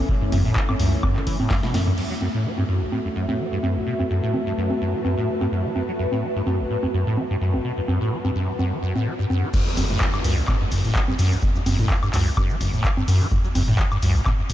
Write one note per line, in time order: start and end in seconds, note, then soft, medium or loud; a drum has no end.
0.00 1.94 E3 medium
0.00 1.94 A3 medium
0.00 1.97 C#4 medium
0.00 1.98 E5 medium
0.09 0.16 B2 medium
0.09 kick loud
0.22 0.25 F#2 medium
0.22 mid tom medium
0.32 0.50 F#1 loud
0.32 0.43 F#2 loud
0.32 mid tom medium
0.32 open hi-hat loud
0.32 high conga medium
0.45 0.58 A2 loud
0.56 0.63 F#3 medium
0.56 kick loud
0.56 clap loud
0.69 0.75 G2 loud
0.69 high conga medium
0.69 high woodblock medium
0.80 0.97 C#2 medium
0.80 0.94 F#2 loud
0.80 open hi-hat loud
0.93 0.96 G2 medium
1.03 1.18 F#2 loud
1.03 kick loud
1.03 high conga medium
1.03 high woodblock medium
1.16 1.22 F#3 loud
1.16 clap soft
1.27 1.44 F#1 medium
1.27 1.38 E3 loud
1.27 kick medium
1.27 open hi-hat loud
1.40 1.49 A2 loud
1.40 high conga medium
1.50 1.61 F#2 loud
1.50 kick loud
1.50 snare medium
1.50 clap loud
1.50 open hi-hat medium
1.63 1.76 B2 loud
1.63 snare medium
1.74 1.92 F#2 medium
1.74 1.81 A2 loud
1.74 snare medium
1.74 open hi-hat loud
1.74 high conga medium
1.87 1.93 F#2 medium
1.87 mid tom medium
1.98 2.05 F#2 medium
1.98 9.50 A3 medium
1.98 9.50 F#4 medium
1.98 9.54 F#4 medium
1.98 9.50 E5 medium
1.98 crash medium
2.11 2.14 F#3 medium
2.21 2.29 F#2 loud
2.21 6.17 E5 medium
2.21 high conga medium
2.34 2.47 A2 loud
2.34 9.54 B4 medium
2.45 2.52 F#3 medium
2.53 9.54 A5 medium
2.58 2.64 G2 loud
2.58 high conga soft
2.69 2.83 F#2 loud
2.81 2.87 F#1 medium
2.92 2.99 A2 medium
2.92 high conga medium
3.05 3.09 F#2 medium
3.16 3.26 F#2 medium
3.29 3.41 A2 loud
3.29 high conga medium
3.39 3.47 F#3 medium
3.52 3.58 G2 medium
3.63 3.77 F#2 medium
3.63 high conga medium
3.76 3.82 F#1 medium
3.87 3.94 B2 medium
3.99 4.03 F#2 medium
3.99 high conga medium
4.10 4.21 F#2 loud
4.23 4.35 A2 loud
4.34 4.41 F#3 medium
4.34 high conga medium
4.47 4.53 G2 loud
4.58 4.72 F#2 loud
4.70 4.74 G2 medium
4.70 high conga medium
4.81 4.95 F#2 loud
4.94 5.00 F#3 medium
5.05 5.15 F#2 medium
5.05 high conga medium
5.18 5.30 A2 loud
5.28 5.36 F#3 medium
5.41 5.47 G2 loud
5.41 high conga medium
5.52 5.66 F#2 loud
5.65 5.71 F#3 loud
5.76 5.83 F#2 medium
5.76 high conga medium
5.89 5.92 F#3 medium
5.99 6.06 F#2 loud
5.99 9.54 F#5 medium
6.12 6.25 A2 loud
6.12 high conga medium
6.23 6.30 F#3 medium
6.36 6.42 G2 loud
6.47 6.61 F#2 loud
6.47 high conga medium
6.59 6.65 F#1 medium
6.70 6.77 A2 medium
6.83 6.87 F#2 medium
6.83 high conga medium
6.94 7.04 F#2 medium
7.07 7.19 A2 loud
7.17 7.25 F#3 medium
7.17 high conga medium
7.30 7.36 G2 loud
7.41 7.55 F#2 loud
7.54 7.60 F#1 medium
7.54 high conga medium
7.65 7.72 B2 medium
7.78 7.81 F#2 medium
7.88 7.99 F#2 medium
7.88 high conga medium
8.01 8.13 A2 loud
8.12 8.19 F#3 medium
8.25 8.31 G2 loud
8.25 high conga medium
8.36 8.50 F#2 loud
8.48 8.52 G2 medium
8.59 8.73 F#2 medium
8.59 high conga medium
8.72 8.78 F#3 medium
8.83 8.93 F#2 medium
8.96 9.08 A2 medium
8.96 high conga medium
9.06 9.13 F#3 medium
9.19 9.25 G2 loud
9.30 9.44 F#2 loud
9.30 high conga medium
9.43 9.49 F#3 loud
9.54 9.61 F#2 medium
9.54 kick loud
9.54 mid tom medium
9.54 crash loud
9.54 downlifter medium
9.54 shaker soft
9.66 9.70 F#3 medium
9.66 shaker soft
9.77 9.95 F#1 loud
9.77 9.84 F#2 loud
9.77 open hi-hat loud
9.77 high conga medium
9.77 shaker medium
9.90 10.02 A2 loud
9.90 mid tom medium
9.90 shaker soft
10.01 10.08 F#3 medium
10.01 kick loud
10.01 clap loud
10.01 shaker soft
10.14 10.20 G2 loud
10.14 high woodblock medium
10.14 shaker soft
10.24 10.42 C#2 medium
10.24 10.39 F#2 loud
10.24 open hi-hat loud
10.24 shaker medium
10.37 10.43 F#1 medium
10.37 shaker soft
10.48 10.55 A2 medium
10.48 kick loud
10.48 clap medium
10.48 high conga soft
10.48 high woodblock medium
10.48 shaker soft
10.61 10.65 F#2 medium
10.72 10.89 F#1 medium
10.72 10.82 F#2 loud
10.72 kick medium
10.72 open hi-hat loud
10.72 shaker medium
10.85 10.97 A2 loud
10.85 shaker soft
10.95 11.02 F#3 medium
10.95 kick loud
10.95 clap loud
10.95 shaker soft
11.08 11.14 G2 loud
11.08 high conga medium
11.19 11.33 F#2 loud
11.19 11.37 F#2 loud
11.19 open hi-hat loud
11.19 shaker medium
11.32 11.38 F#1 medium
11.32 shaker soft
11.42 11.50 B2 medium
11.42 kick loud
11.42 mid tom medium
11.42 shaker soft
11.55 11.59 F#2 medium
11.55 shaker soft
11.66 11.84 F#1 loud
11.66 11.77 F#2 loud
11.66 open hi-hat loud
11.66 high conga medium
11.66 shaker medium
11.79 11.91 A2 loud
11.79 mid tom loud
11.79 shaker soft
11.90 11.97 F#3 medium
11.90 kick loud
11.90 clap loud
11.90 shaker soft
12.03 12.09 G2 loud
12.03 high woodblock medium
12.03 shaker soft
12.14 12.31 C#2 medium
12.14 12.28 F#2 loud
12.14 clap medium
12.14 open hi-hat loud
12.14 shaker medium
12.26 12.30 G2 medium
12.26 shaker soft
12.37 12.51 F#2 loud
12.37 kick loud
12.37 high conga soft
12.37 high woodblock medium
12.37 shaker soft
12.50 12.56 F#3 loud
12.50 shaker soft
12.61 12.78 F#1 medium
12.61 12.71 F#2 loud
12.61 kick medium
12.61 mid tom medium
12.61 open hi-hat loud
12.61 shaker medium
12.74 12.86 A2 loud
12.74 shaker soft
12.84 12.91 F#3 medium
12.84 kick loud
12.84 clap loud
12.84 shaker soft
12.97 13.03 G2 loud
12.97 high conga medium
13.08 13.22 F#2 loud
13.08 13.26 F#2 loud
13.08 open hi-hat loud
13.08 shaker medium
13.21 13.27 F#3 loud
13.21 shaker soft
13.32 13.39 F#2 medium
13.32 kick loud
13.32 mid tom medium
13.32 shaker soft
13.44 13.48 F#3 medium
13.44 shaker soft
13.55 13.73 F#1 loud
13.55 13.62 F#2 loud
13.55 open hi-hat loud
13.55 high conga medium
13.55 shaker medium
13.68 13.80 A2 loud
13.68 mid tom medium
13.68 shaker soft
13.79 13.86 F#3 medium
13.79 kick loud
13.79 clap loud
13.79 shaker soft
13.92 13.98 G2 loud
13.92 high woodblock medium
13.92 shaker soft
14.03 14.20 C#2 medium
14.03 14.17 F#2 loud
14.03 open hi-hat loud
14.03 shaker medium
14.15 14.21 F#1 medium
14.15 shaker soft
14.26 14.33 A2 medium
14.26 kick loud
14.26 clap medium
14.26 high conga soft
14.26 high woodblock medium
14.26 shaker soft
14.39 14.42 F#2 medium
14.50 14.53 F#1 medium
14.50 14.53 F#2 loud
14.50 kick medium
14.50 open hi-hat loud
14.50 shaker medium